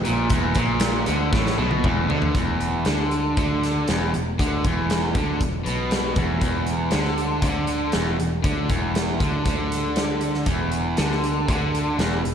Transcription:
Already playing: tonewheel organ G#4 B4 E5
0.05 picked electric bass A#1, overdriven electric guitar A#2, closed hi-hat
0.30 picked electric bass E1, overdriven electric guitar E2, kick, closed hi-hat
0.55 picked electric bass A#1, overdriven electric guitar A#2, kick, closed hi-hat
0.80 snare, closed hi-hat
1.06 picked electric bass D2, overdriven electric guitar D3, closed hi-hat
1.33 picked electric bass A1, overdriven electric guitar A2, kick, snare
1.47 snare
1.58 picked electric bass B1, overdriven electric guitar B2
1.71 high tom
1.84 picked electric bass E1, overdriven electric guitar E2, kick, mid tom
2.09 picked electric bass D2, overdriven electric guitar D3, floor tom
2.22 floor tom
2.35 picked electric bass E1, overdriven electric guitar E2, kick, closed hi-hat
2.61 closed hi-hat
2.85 picked electric bass D2, overdriven electric guitar D3, snare, closed hi-hat
3.11 closed hi-hat
3.37 picked electric bass D2, overdriven electric guitar D3, kick, closed hi-hat
3.63 snare, closed hi-hat
3.88 picked electric bass E1, overdriven electric guitar E2, snare, closed hi-hat
4.14 picked electric bass E1, overdriven electric guitar E2, closed hi-hat
4.39 picked electric bass D2, overdriven electric guitar D3, kick, closed hi-hat
4.64 picked electric bass E1, overdriven electric guitar E2, kick, closed hi-hat
4.90 snare, closed hi-hat
5.15 picked electric bass D2, overdriven electric guitar D3, kick, closed hi-hat
5.41 picked electric bass E1, overdriven electric guitar E2, kick, closed hi-hat
5.65 picked electric bass B1, overdriven electric guitar B2, closed hi-hat
5.91 snare, closed hi-hat
6.16 picked electric bass E1, overdriven electric guitar E2, kick, closed hi-hat
6.40 picked electric bass E1, overdriven electric guitar E2, kick, closed hi-hat
6.67 closed hi-hat
6.91 picked electric bass D2, overdriven electric guitar D3, snare, closed hi-hat
7.05 snare
7.18 closed hi-hat
7.42 picked electric bass D2, overdriven electric guitar D3, kick, closed hi-hat
7.67 closed hi-hat
7.92 picked electric bass E1, overdriven electric guitar E2, snare, closed hi-hat
8.18 picked electric bass E1, overdriven electric guitar E2, closed hi-hat
8.44 picked electric bass D2, overdriven electric guitar D3, kick, closed hi-hat
8.68 picked electric bass E1, overdriven electric guitar E2, kick, closed hi-hat
8.95 snare, closed hi-hat
9.20 picked electric bass D2, overdriven electric guitar D3, kick, closed hi-hat
9.45 picked electric bass D2, overdriven electric guitar D3, kick, closed hi-hat
9.72 snare, closed hi-hat
9.96 snare, closed hi-hat
10.21 closed hi-hat
10.34 snare
10.46 picked electric bass E1, overdriven electric guitar E2, kick, closed hi-hat
10.72 closed hi-hat
10.97 picked electric bass D2, overdriven electric guitar D3, snare, closed hi-hat
11.12 snare
11.24 closed hi-hat
11.48 picked electric bass D2, overdriven electric guitar D3, kick, closed hi-hat
11.75 closed hi-hat
11.98 picked electric bass E1, overdriven electric guitar E2, snare, closed hi-hat
12.23 picked electric bass E1, overdriven electric guitar E2, closed hi-hat

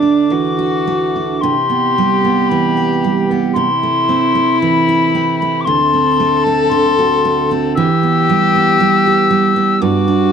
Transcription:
Already playing: steel-string acoustic guitar D2 A3, cello D4, tin whistle D6
0.02 steel-string acoustic guitar D4
0.30 steel-string acoustic guitar E3, cello F#4
0.59 steel-string acoustic guitar F#4
0.87 steel-string acoustic guitar A3
1.16 steel-string acoustic guitar D4
1.41 steel-string acoustic guitar C3, cello G4, tin whistle C6
1.70 steel-string acoustic guitar B3
1.98 steel-string acoustic guitar G3
2.24 steel-string acoustic guitar B3
2.48 steel-string acoustic guitar E3, tin whistle B5
2.77 steel-string acoustic guitar G4
3.04 steel-string acoustic guitar G3
3.31 steel-string acoustic guitar B3
3.53 steel-string acoustic guitar C3, cello E4, tin whistle C6
3.83 steel-string acoustic guitar A3
4.09 steel-string acoustic guitar C4
4.35 steel-string acoustic guitar A3
4.59 steel-string acoustic guitar E3, tin whistle B5
4.89 steel-string acoustic guitar E4
5.15 steel-string acoustic guitar C4
5.38 steel-string acoustic guitar A3, tin whistle B5
5.60 tin whistle D6
5.65 steel-string acoustic guitar D2, cello A4, tin whistle C6
5.94 steel-string acoustic guitar C4
6.20 steel-string acoustic guitar A3
6.44 steel-string acoustic guitar C4, tin whistle A5
6.69 steel-string acoustic guitar D3, tin whistle C6
6.99 steel-string acoustic guitar F#4
7.25 steel-string acoustic guitar A3
7.51 steel-string acoustic guitar C4
7.75 steel-string acoustic guitar E3, cello G4, tin whistle E6
8.03 steel-string acoustic guitar B3
8.29 steel-string acoustic guitar G3
8.55 steel-string acoustic guitar B3
8.80 steel-string acoustic guitar G3
9.06 steel-string acoustic guitar G4
9.30 steel-string acoustic guitar G3
9.56 steel-string acoustic guitar B3
9.81 steel-string acoustic guitar G2, cello F#4, tin whistle D6
10.08 steel-string acoustic guitar D4

